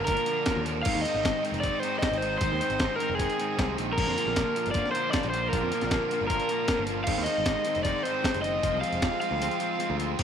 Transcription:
Already playing: F3 A#3 D4 A#4 D5 F5 D6
0.00 G1
0.05 A#2 A#4, kick, closed hi-hat
0.11 A#2 D3 F3 A#3 D4
0.17 closed hi-hat
0.26 A#2, closed hi-hat
0.31 A#2 D3 F3 A#3 D4
0.46 kick, snare, closed hi-hat
0.50 A#2 D3 F3 A#3 D4
0.56 D#2
0.66 A#2 D3 F3 A#3 D4, closed hi-hat
0.83 G#1 G#2 D#3 C5 F5 G#5, kick, crash
0.87 G#3 C4 D#4 D#5 D#6
0.95 D#2
1.01 G#2 D#5, closed hi-hat
1.06 D#3 G#3 C4 D#4
1.14 G#1, snare
1.24 G#2 D#3 G#3 C4 D#4, kick, snare, closed hi-hat
1.45 G#2 D#3 G#3 C4 D#4, closed hi-hat
1.52 F1, closed hi-hat
1.60 D#3 D5, kick, closed hi-hat
1.64 G#2 G#3 C4 D#4
1.80 G#2 C5, closed hi-hat
1.84 D#3 G#3 C4 D#4
1.99 D#5, kick, closed hi-hat
2.03 G#2 D#3 G#3 C4 D#4, snare
2.11 G#1, closed hi-hat
2.18 C5
2.22 G#2 D#3 G#3 C4 D#4, closed hi-hat
2.38 G#1 C5, kick, closed hi-hat
2.42 G#2 D#3 G#3 C4 D#4
2.52 D#2
2.61 G#2 D#3 G#3 C4 D#4, closed hi-hat
2.70 G#1, closed hi-hat
2.78 G#2, kick, snare, closed hi-hat
2.82 G#2 D#3 G#3 C4 D#4
2.96 A#4
3.00 G#2 D#3 G#3 C4 D#4, closed hi-hat
3.09 F1
3.15 G#4
3.20 G#2 D#3 G#3 C4 D#4, kick, closed hi-hat
3.30 closed hi-hat
3.40 G#2 D#3 G#3 C4 D#4, closed hi-hat
3.58 C2 G#2 D#3 G#3 C4 D#4, kick, snare, closed hi-hat
3.78 A#1 G#2 D#3 G#3 C4 D#4, closed hi-hat
3.93 A#4 D5 F5
3.97 A#1 A#2 D3 F3 A#3 D4 F4 A#4 D6, kick, crash
4.07 F2
4.17 A#2 D3 F3 A#3 D4 F4, closed hi-hat
4.26 A#1, snare
4.36 A#2 D3 F3 A#3 D4 F4, kick, snare, closed hi-hat
4.56 A#2 D3 F3 A#3 D4 F4, closed hi-hat
4.66 G1, closed hi-hat
4.71 D5, kick, closed hi-hat
4.75 A#2 D3 F3 A#3 D4 F4
4.86 snare
4.91 A#2 C5, closed hi-hat
4.95 D3 F3 A#3 D4 F4
5.10 D5, snare, closed hi-hat
5.14 A#2 D3 F3 A#3 D4 F4, kick
5.23 A#1, closed hi-hat
5.30 C5, closed hi-hat
5.34 A#2 D3 F3 A#3 D4 F4
5.49 A#4
5.53 A#1 A#2 D3 F3 A#3 D4 F4, kick, closed hi-hat
5.62 F2
5.72 A#2 D3 F3 A#3 D4 F4, closed hi-hat
5.81 A#1, snare, closed hi-hat
5.91 A#2 D3 F3 A#3 D4 F4, kick, snare, closed hi-hat
6.11 A#2 D3 F3 A#3 D4 F4, closed hi-hat
6.21 G1
6.27 A#2 D3 F3 A#3 F4 A#4, kick, closed hi-hat
6.31 D4
6.40 closed hi-hat
6.49 A#2 D3 F3 A#3 D4 F4, closed hi-hat
6.68 A#2 D3 F3 A#3 D4 F4, kick, snare, closed hi-hat
6.79 G1
6.87 A#2 D3 F3 A#3 F4, closed hi-hat
6.91 D4
7.04 G#1 G#2 D#3 G#3 C4 G#4 C5 F5 C6, kick, crash
7.08 D#4 D#5
7.18 D#2
7.24 G#2 D#3 G#3 C4 D#4 D#5, closed hi-hat
7.38 G#1
7.45 G#2 D#3 G#3 C4 D#4, kick, snare, closed hi-hat
7.65 G#2 D#3 G#3 C4 D#4, closed hi-hat
7.75 F1, closed hi-hat
7.83 G#2 D#3 G#3 C4 D#4 D5, kick, closed hi-hat
8.03 G#2 D#3 G#3 C4 D#4 C5, closed hi-hat
8.23 G#2 D#3 G#3 C4 D#4, kick, snare, closed hi-hat
8.34 F#1, closed hi-hat
8.42 G#2 D#3 G#3 C4 D#4 D#5, closed hi-hat
8.62 F1 F3 G#3 C4 F4 G#4 C5 F5 C6, kick, closed hi-hat
8.74 C2
8.81 F3 G#3 C4 F4 F5, closed hi-hat
8.93 F1, closed hi-hat
9.02 F3 G#3 C4 F4, kick, snare, closed hi-hat
9.21 F3 G#3 C4 F4 F5, closed hi-hat
9.31 D2
9.41 F3 G#3 C4 F4, closed hi-hat
9.51 closed hi-hat
9.60 F3 G#3 C4 F4, closed hi-hat
9.79 F3 G#3 C4 F4, closed hi-hat
9.90 D2
9.99 F3 G#3 C4 F4, closed hi-hat
10.19 D#2 D#3 A#3, kick, crash

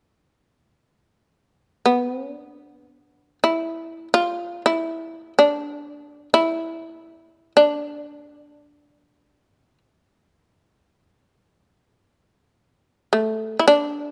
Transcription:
1.86 B3
2.11 C4
2.22 C#4
2.34 D4
3.44 E4
4.14 F4
4.66 E4
5.39 D4
6.34 E4
7.57 D4
13.13 A3
13.59 E4
13.68 D4

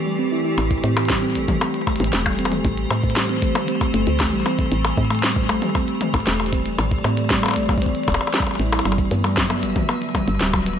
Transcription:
Already playing: E3 A3 G4 B4 D5
0.06 G3
0.19 C4
0.32 E4
0.45 E4
0.58 A1, closed hi-hat, percussion blips
0.71 kick, closed hi-hat
0.84 A2 C4, closed hi-hat
0.97 A3, closed hi-hat, percussion blips
1.05 closed hi-hat
1.09 G3, kick, snare, closed hi-hat
1.14 closed hi-hat
1.22 C4
1.35 A1 A3, closed hi-hat
1.48 G3, kick, closed hi-hat, high tom
1.61 C4, closed hi-hat, percussion blips
1.74 closed hi-hat
1.87 A3, kick, closed hi-hat, percussion blips
1.96 C5, closed hi-hat
2.00 A1, closed hi-hat, high tom
2.04 closed hi-hat
2.13 E1 A3, snare, closed hi-hat
2.26 G3, kick, percussion blips
2.39 C4, closed hi-hat
2.45 percussion blips
2.52 A3, closed hi-hat, high tom
2.65 A1, kick, closed hi-hat
2.78 closed hi-hat
2.91 A2 C4, closed hi-hat, percussion blips
3.04 A3, kick
3.10 closed hi-hat
3.16 G3, snare, closed hi-hat, percussion blips
3.29 C4, closed hi-hat
3.42 A1 A3, kick, closed hi-hat
3.55 G3, closed hi-hat, high tom, percussion blips
3.68 C4, closed hi-hat
3.81 kick, closed hi-hat, percussion blips
3.94 G1 A3, closed hi-hat
4.07 D2, closed hi-hat
4.20 A3, kick, snare, closed hi-hat, percussion blips
4.33 A1 G3
4.46 C4, closed hi-hat, percussion blips
4.59 A3, kick, closed hi-hat
4.72 A1, closed hi-hat
4.85 closed hi-hat, percussion blips
4.98 A2 C4, kick
5.10 A3, closed hi-hat, percussion blips
5.15 closed hi-hat
5.19 closed hi-hat
5.23 G3, snare, closed hi-hat
5.28 closed hi-hat
5.32 closed hi-hat
5.36 C4, kick
5.49 A1 A3, percussion blips
5.62 G3, closed hi-hat, high tom
5.75 C4, kick, closed hi-hat, percussion blips
5.88 closed hi-hat
6.01 A3, closed hi-hat, high tom
6.14 A1, kick, closed hi-hat, percussion blips
6.20 D5, closed hi-hat
6.27 E1 A3, snare, closed hi-hat
6.33 closed hi-hat
6.40 G3, closed hi-hat, percussion blips
6.46 closed hi-hat
6.53 C4, kick, closed hi-hat
6.66 A3, closed hi-hat
6.78 A1, closed hi-hat, high tom, percussion blips
6.91 kick, closed hi-hat
7.04 A2 C4, closed hi-hat, percussion blips
7.17 A3, closed hi-hat
7.30 G3, kick, snare, closed hi-hat
7.43 C4, closed hi-hat, percussion blips
7.46 percussion blips
7.48 percussion blips
7.51 percussion blips
7.54 A1 A3, closed hi-hat, percussion blips
7.69 G3, kick, closed hi-hat, high tom, percussion blips
7.78 kick
7.82 C4, closed hi-hat
7.86 kick
7.95 closed hi-hat
8.04 closed hi-hat
8.08 E1, kick, closed hi-hat, percussion blips
8.12 closed hi-hat, percussion blips
8.21 closed hi-hat, percussion blips
8.27 percussion blips
8.34 G3, snare, closed hi-hat, percussion blips
8.38 kick, percussion blips
8.42 percussion blips
8.47 C4, percussion blips
8.51 percussion blips
8.55 percussion blips
8.60 A1 E4, closed hi-hat
8.72 E4, closed hi-hat, percussion blips
8.79 percussion blips
8.85 G1 D3 G3 E5, closed hi-hat, percussion blips
8.92 percussion blips
8.98 kick, closed hi-hat
9.11 G2 B3, closed hi-hat
9.24 G3, closed hi-hat, percussion blips
9.37 F#3, kick, snare, closed hi-hat
9.50 B3, percussion blips
9.63 G1 G3, closed hi-hat
9.76 F#3, kick, closed hi-hat, high tom
9.85 B3 F#4 B4, closed hi-hat, percussion blips
10.02 closed hi-hat
10.15 G3, kick, closed hi-hat, high tom, percussion blips
10.28 G1, closed hi-hat
10.41 D1 G3, snare, closed hi-hat
10.54 F#3, kick, percussion blips
10.66 B3, closed hi-hat

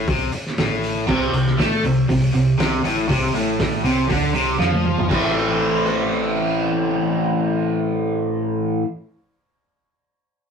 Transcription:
0.08 C2 C3, kick, open hi-hat
0.32 muted fingered electric bass stroke, muted overdriven electric guitar stroke, open hi-hat
0.47 snare
0.57 A1 A2, snare, open hi-hat
0.84 open hi-hat
1.07 C2 C3, kick, crash
1.32 C2 C3, open hi-hat
1.47 snare
1.59 A2 A3, kick, snare, open hi-hat
1.83 C2 C3, open hi-hat
2.08 C2 C3, kick, open hi-hat
2.33 C2 C3, open hi-hat
2.58 C2 C3, snare, open hi-hat
2.84 A1 A2, open hi-hat
3.09 C2 C3, kick, open hi-hat
3.34 A1 A2, open hi-hat
3.60 kick, snare, open hi-hat
3.83 C2 C3, open hi-hat
4.09 D2 D3, kick, open hi-hat
4.34 C2 C3, open hi-hat
4.59 F2 F3, snare
4.73 high tom
4.85 mid tom
4.98 floor tom
5.09 A1 A2 E3 A3 C4 E4, kick, crash
5.86 cross-stick

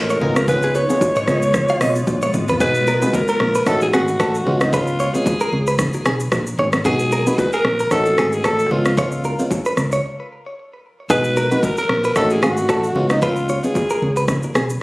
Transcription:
Already playing: A1 C#4 D#4 F#4 A4 A#4
0.10 C#5, shaker
0.21 C#2 C#3 G#3 B3 C#4 F4 G#4 A#4, mid tom, low conga
0.36 cross-stick, low bongo, shaker
0.47 B3 C#4 F4 G#4 B4, kick, low conga, shaker
0.62 G#4, shaker
0.75 B4 C#5, high bongo, shaker
0.89 B3 C#4 F4 G#4, low bongo, shaker
1.01 kick, high bongo, shaker
1.16 C#5, mid tom, shaker
1.27 C#2 B3 C#4 F4 G#4 D#5, cross-stick, low bongo, shaker
1.42 shaker
1.54 kick, cross-stick, low conga, shaker
1.68 F5, high bongo, shaker
1.81 B1 D#5, cross-stick, open hi-hat, low bongo, shaker
1.95 shaker
2.07 A#1, kick, high tom, high bongo, shaker
2.22 C#5, shaker
2.34 G#1, mid tom, low conga, shaker
2.48 B4, floor tom, low bongo, shaker
2.60 B1 B3 D#4 F#4 G#4 B4, kick, low conga, shaker
2.74 shaker
2.87 A#4, high bongo, shaker
3.01 B3 D#4 F#4 G#4 B4, low bongo, shaker
3.13 A#4, kick, high bongo, shaker
3.28 A#4, shaker
3.40 A#1, cross-stick, low bongo
3.55 B4, shaker
3.66 A1 A3 C#4 D#4 F#4 A4, kick, cross-stick, low conga, shaker
3.81 G#4, high bongo, shaker
3.93 G#1 F#4 G#4, cross-stick, low bongo, shaker
4.08 shaker
4.20 A1 A4, kick, cross-stick, high bongo, shaker
4.35 shaker
4.46 C#2 G#3 B3 C#4 F4, low conga
4.61 D#4, cross-stick, low bongo, shaker
4.72 G#3 B3 C#4 F4 B4, kick, low conga, shaker
4.87 shaker
4.99 C#5, high bongo, shaker
5.14 G#3 B3 C#4 F4 G#4, low bongo, shaker
5.26 kick, high bongo, shaker
5.40 A#4, shaker
5.53 C#2, low bongo
5.67 B4, shaker
5.79 kick, cross-stick, low conga, shaker
5.93 high bongo, shaker
6.05 B1 G#4, cross-stick, low bongo, shaker
6.20 shaker
6.32 A#1, kick, cross-stick, high bongo, shaker
6.47 shaker
6.59 G#1 C#5, low conga
6.73 cross-stick, low bongo, shaker
6.85 B1 G#3 B3 D#4 F#4 G#4, kick, low conga, shaker
6.99 shaker
7.12 A#4, high bongo, shaker
7.26 G#3 B3 D#4 F#4 B4, low bongo, shaker
7.38 B4, kick, high bongo, shaker
7.53 G#4 A#4, shaker
7.65 A#1, cross-stick, low bongo
7.79 A#4, shaker
7.91 A1 A3 C#4 D#4 F#4 A4, kick, cross-stick, low conga, shaker
8.06 high bongo, shaker
8.18 G#1 G#4, cross-stick, low bongo, shaker
8.33 G#4, shaker
8.44 A1 A4, kick, cross-stick, high bongo, shaker
8.59 shaker
8.71 C#2 G#3 B3 C#4 F4, low conga
8.85 cross-stick, low bongo, shaker
8.97 G#3 B3 C#4 F4 C#5, kick, low conga, shaker
9.12 shaker
9.24 A#4, high bongo, shaker
9.38 G#3 B3 C#4 F4, low bongo, shaker
9.51 kick, high bongo, shaker
9.65 B4, shaker
9.77 C#2, cross-stick, low bongo, shaker
9.92 C#5, shaker
11.10 B1 G#3 B3 D#4 F#4 G#4 B4, kick, low conga, shaker
11.24 shaker
11.37 A#4, high bongo, shaker
11.51 G#3 B3 D#4 F#4 B4, low bongo, shaker
11.63 A#4, kick, high bongo, shaker
11.77 A#4, shaker
11.89 A#1, cross-stick, low bongo
12.04 B4, shaker
12.16 A1 A3 C#4 D#4 F#4 A4, kick, cross-stick, low conga, shaker
12.30 G#4, high bongo, shaker
12.43 G#1 F#4 G#4, cross-stick, low bongo, shaker
12.57 shaker
12.69 A1 A4, kick, cross-stick, high bongo, shaker
12.84 shaker
12.95 C#2 G#3 B3 C#4 F4, low conga
13.10 D#4, cross-stick, low bongo, shaker
13.22 G#3 B3 C#4 F4 B4, kick, low conga, shaker
13.36 shaker
13.49 C#5, high bongo, shaker
13.63 G#3 B3 C#4 F4 G#4, low bongo, shaker
13.75 kick, high bongo, shaker
13.90 A#4, shaker
14.02 C#2, low bongo
14.16 B4, shaker
14.28 kick, cross-stick, low conga, shaker
14.43 high bongo, shaker
14.55 B1 G#4, cross-stick, low bongo, shaker
14.70 shaker

